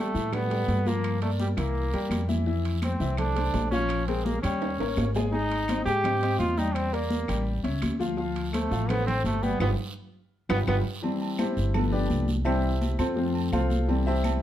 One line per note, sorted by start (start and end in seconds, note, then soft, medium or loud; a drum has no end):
0.00 0.11 G3 medium
0.00 0.35 A3 loud
0.00 0.11 G4 medium
0.00 0.11 A4 medium
0.14 0.65 A2 medium
0.14 0.29 E3 medium
0.14 0.29 E4 medium
0.14 0.30 E5 medium
0.14 high conga soft
0.14 short guiro medium
0.32 0.47 G3 medium
0.32 0.89 B3 loud
0.32 0.47 G4 medium
0.32 0.47 A4 medium
0.32 high conga soft
0.32 low conga medium
0.32 high timbale medium
0.32 long guiro medium
0.32 claves medium
0.50 0.79 G3 medium
0.50 0.79 G4 medium
0.50 0.80 A4 medium
0.50 high conga soft
0.50 low conga medium
0.50 high timbale medium
0.68 1.52 G2 medium
0.68 high conga medium
0.68 high timbale medium
0.68 short guiro medium
0.86 1.15 F3 medium
0.86 1.22 A#3 loud
0.86 1.15 F4 medium
0.86 1.16 F5 medium
0.86 high conga medium
0.86 short guiro medium
1.04 high conga soft
1.04 high timbale medium
1.04 long guiro medium
1.04 claves medium
1.21 1.30 A3 medium
1.21 1.51 A#3 medium
1.21 1.51 A#4 medium
1.21 1.51 D5 medium
1.21 high conga soft
1.21 high timbale medium
1.40 1.48 G3 medium
1.40 high conga loud
1.40 short guiro medium
1.57 1.91 C2 medium
1.57 1.86 E3 medium
1.57 2.25 A#3 medium
1.57 1.87 E4 medium
1.57 1.87 E5 medium
1.57 high timbale medium
1.57 short guiro medium
1.57 claves medium
1.75 high conga soft
1.75 long guiro medium
1.93 2.09 E2 medium
1.93 2.22 G3 medium
1.93 2.23 G4 medium
1.93 2.23 A#4 medium
1.93 high conga soft
1.93 high timbale medium
2.10 2.94 F2 medium
2.10 high conga medium
2.10 high timbale medium
2.10 short guiro medium
2.10 claves medium
2.28 2.43 E3 medium
2.28 2.43 E4 medium
2.28 2.44 E5 medium
2.28 high conga medium
2.28 short guiro medium
2.46 2.76 E3 medium
2.46 2.76 E4 medium
2.46 2.76 E5 medium
2.46 high conga soft
2.46 long guiro medium
2.65 high timbale medium
2.82 2.97 A3 medium
2.82 3.16 C4 medium
2.82 2.97 A4 medium
2.82 2.98 C5 medium
2.82 high conga loud
2.82 high timbale medium
2.82 short guiro medium
2.82 claves medium
3.00 3.50 C2 medium
3.00 3.15 E3 medium
3.00 3.15 E4 medium
3.00 3.15 E5 medium
3.00 high conga soft
3.00 short guiro medium
3.17 3.33 A3 medium
3.17 3.68 D4 medium
3.17 3.33 A4 medium
3.17 3.33 C5 medium
3.17 high conga soft
3.17 low conga medium
3.17 high timbale medium
3.17 long guiro medium
3.17 claves medium
3.36 3.65 A3 medium
3.36 3.65 A4 medium
3.36 3.66 C5 medium
3.36 high conga soft
3.36 low conga medium
3.36 high timbale medium
3.54 4.37 A#1 medium
3.54 high conga medium
3.54 high timbale medium
3.54 low timbale medium
3.54 short guiro medium
3.71 4.01 F3 medium
3.71 4.04 C#4 loud
3.71 4.01 F4 medium
3.71 4.01 F5 medium
3.71 high conga medium
3.71 short guiro medium
3.89 high conga soft
3.89 high timbale medium
3.89 long guiro medium
3.89 claves medium
4.07 4.37 G#3 medium
4.07 4.26 C4 medium
4.07 4.37 G#4 medium
4.07 4.37 A#4 medium
4.07 high conga soft
4.07 high timbale medium
4.25 4.42 A#3 medium
4.25 high conga medium
4.25 short guiro medium
4.42 4.76 D#2 medium
4.42 4.73 G3 medium
4.42 5.10 C#4 medium
4.42 4.73 G4 medium
4.42 4.73 G5 medium
4.42 high conga soft
4.42 high timbale medium
4.42 short guiro medium
4.42 claves medium
4.62 high conga soft
4.62 high timbale medium
4.62 long guiro medium
4.79 4.95 A1 medium
4.79 5.09 A#3 medium
4.79 5.09 A#4 medium
4.79 5.09 C#5 medium
4.79 high conga soft
4.79 high timbale medium
4.97 5.80 G#1 medium
4.97 high conga medium
4.97 low timbale medium
4.97 short guiro medium
4.97 claves medium
5.15 5.30 G#3 medium
5.15 5.30 G#4 medium
5.15 5.30 G#5 medium
5.15 high conga medium
5.15 low timbale medium
5.15 short guiro medium
5.32 5.62 G#3 medium
5.32 5.82 D#4 loud
5.32 5.62 G#4 medium
5.32 5.62 G#5 medium
5.32 high conga soft
5.32 long guiro medium
5.51 high conga soft
5.51 high timbale medium
5.68 5.83 C4 medium
5.68 5.83 C5 medium
5.68 5.83 D#5 medium
5.68 high conga loud
5.68 high timbale medium
5.68 short guiro medium
5.68 claves medium
5.85 6.36 G#2 medium
5.85 6.01 G#3 medium
5.85 6.35 G4 loud
5.85 6.01 G#4 medium
5.85 6.01 G#5 medium
5.85 high conga soft
5.85 short guiro medium
6.04 6.19 C4 medium
6.04 6.19 C5 medium
6.04 6.19 D#5 medium
6.04 high conga soft
6.04 low conga medium
6.04 high timbale medium
6.04 long guiro medium
6.04 claves medium
6.22 6.51 C4 medium
6.22 6.51 C5 medium
6.22 6.52 D#5 medium
6.22 high conga soft
6.22 high timbale medium
6.39 7.23 E2 medium
6.39 6.59 F4 loud
6.39 high conga medium
6.39 high timbale medium
6.39 short guiro medium
6.58 6.87 G3 medium
6.58 6.76 D#4 medium
6.58 6.87 G4 medium
6.58 6.87 G5 medium
6.58 high conga medium
6.58 short guiro medium
6.75 6.95 C4 loud
6.75 high conga soft
6.75 high timbale medium
6.75 long guiro medium
6.75 claves medium
6.93 7.22 A#3 medium
6.93 7.46 A#3 medium
6.93 7.22 A#4 medium
6.93 7.22 D5 medium
6.93 high conga soft
6.93 high timbale medium
7.10 high conga loud
7.10 short guiro medium
7.28 7.62 A1 medium
7.28 7.57 G3 medium
7.28 7.58 G4 medium
7.28 7.58 G5 medium
7.28 high timbale medium
7.28 short guiro medium
7.28 claves medium
7.47 high conga soft
7.47 long guiro medium
7.63 7.81 C#2 medium
7.63 7.93 C#4 medium
7.63 7.93 C#5 medium
7.63 7.93 E5 medium
7.63 high conga soft
7.63 high timbale medium
7.82 8.66 D2 medium
7.82 high conga medium
7.82 high timbale medium
7.82 short guiro medium
7.82 claves medium
7.99 8.14 F3 medium
7.99 8.14 F4 medium
7.99 8.15 F5 medium
7.99 high conga medium
7.99 short guiro medium
8.17 8.47 F3 medium
8.17 8.47 F4 medium
8.17 8.47 F5 medium
8.17 high conga soft
8.17 long guiro medium
8.36 high conga soft
8.36 high timbale medium
8.53 8.90 A3 medium
8.53 8.68 A3 medium
8.53 8.68 A4 medium
8.53 8.69 C5 medium
8.53 high conga loud
8.53 high timbale medium
8.53 short guiro medium
8.53 claves medium
8.71 9.21 A1 medium
8.71 8.86 F3 medium
8.71 8.86 F4 medium
8.71 8.86 F5 medium
8.71 high conga soft
8.71 short guiro medium
8.89 9.04 A3 medium
8.89 9.06 B3 loud
8.89 9.04 A4 medium
8.89 9.04 C5 medium
8.89 high conga soft
8.89 low conga medium
8.89 high timbale medium
8.89 long guiro medium
8.89 claves medium
9.07 9.36 A3 medium
9.07 9.23 C4 loud
9.07 9.36 A4 medium
9.07 9.37 C5 medium
9.07 high conga soft
9.07 low conga medium
9.07 high timbale medium
9.24 9.58 G1 medium
9.24 9.44 A3 medium
9.24 high conga medium
9.24 high timbale medium
9.24 short guiro medium
9.43 9.57 G3 medium
9.43 9.61 B3 loud
9.43 9.57 G4 medium
9.43 9.57 G5 medium
9.43 high conga medium
9.43 short guiro medium
9.60 9.73 G1 loud
9.60 9.69 B3 medium
9.60 9.72 F4 medium
9.60 9.72 G4 medium
9.60 9.72 B4 loud
9.60 low conga medium
9.60 high timbale loud
9.60 long guiro medium
9.60 claves loud
10.49 10.63 G1 loud
10.49 10.58 B3 loud
10.49 10.61 F4 loud
10.49 10.61 G4 loud
10.49 10.61 B4 medium
10.49 low conga loud
10.49 high timbale loud
10.49 long guiro loud
10.49 claves loud
10.67 10.81 G1 loud
10.67 10.76 B3 loud
10.67 10.79 F4 loud
10.67 10.79 G4 medium
10.67 10.79 B4 loud
10.67 low conga loud
10.67 high timbale medium
10.67 long guiro loud
10.67 claves loud
11.02 11.70 E3 medium
11.02 11.71 G3 medium
11.02 11.71 C4 medium
11.02 high conga soft
11.02 low agogo medium
11.22 high conga soft
11.22 low agogo medium
11.39 11.89 E4 medium
11.39 11.89 G4 medium
11.39 11.72 C5 medium
11.39 11.88 E5 medium
11.39 high conga loud
11.39 low agogo loud
11.39 short guiro medium
11.39 claves medium
11.57 12.06 G1 medium
11.57 high conga soft
11.57 short guiro medium
11.74 12.25 F3 medium
11.74 12.25 A3 medium
11.74 12.26 B3 medium
11.74 high conga soft
11.74 low conga medium
11.74 low agogo loud
11.74 long guiro medium
11.74 claves medium
11.92 12.26 D4 medium
11.92 12.26 G4 medium
11.92 12.25 B4 medium
11.92 12.25 D5 medium
11.92 high conga soft
11.92 low conga medium
12.10 12.93 C2 medium
12.10 high conga medium
12.10 low agogo medium
12.10 short guiro medium
12.28 high conga medium
12.28 short guiro medium
12.45 12.69 E3 medium
12.45 12.69 G3 medium
12.45 12.69 C4 medium
12.45 12.95 E4 medium
12.45 12.95 G4 medium
12.45 12.95 C5 medium
12.45 12.95 E5 loud
12.45 high conga soft
12.45 low agogo loud
12.45 long guiro medium
12.45 claves medium
12.64 high conga soft
12.81 high conga loud
12.81 low agogo medium
12.81 short guiro medium
12.99 13.49 F2 medium
12.99 13.15 C4 medium
12.99 13.32 F4 medium
12.99 13.32 A4 medium
12.99 13.32 C5 medium
12.99 high conga soft
12.99 low agogo loud
12.99 short guiro medium
12.99 claves medium
13.16 13.67 F3 medium
13.16 13.67 A3 soft
13.16 13.68 C4 medium
13.16 high conga soft
13.16 long guiro medium
13.35 high conga soft
13.35 low agogo medium
13.52 14.36 C2 medium
13.52 13.86 F4 medium
13.52 14.03 A4 medium
13.52 14.02 C5 medium
13.52 13.86 F5 medium
13.52 high conga medium
13.52 low agogo loud
13.52 short guiro medium
13.52 claves medium
13.70 high conga medium
13.70 short guiro medium
13.88 14.39 E3 medium
13.88 14.39 G3 medium
13.88 14.39 C4 medium
13.88 high conga soft
13.88 low agogo medium
13.88 long guiro medium
14.07 14.40 E4 medium
14.07 14.40 G4 medium
14.07 14.40 C5 medium
14.07 14.40 E5 loud
14.07 low agogo medium
14.24 high conga medium
14.24 low agogo loud
14.24 short guiro medium
14.24 claves medium